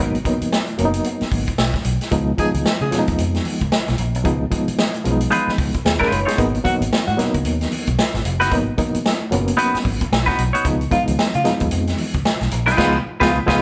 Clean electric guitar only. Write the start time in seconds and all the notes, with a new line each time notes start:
5.31 G#3 D#4 F4 B4
6.00 G#3 D#4 F4 B4
6.25 G#3 D#4 F4 C#5
8.40 B3 D#4 F#4 B4
9.57 B3 D#4 F#4 B4
10.26 B3 D#4 F#4 B4
10.53 B3 D#4 F#4 C#5
12.66 G#3 D#4 F4 B4
12.77 G#3 D#4 F4 B4
13.20 G#3 D#4 F4 B4
13.47 G#3 D#4 F4 B4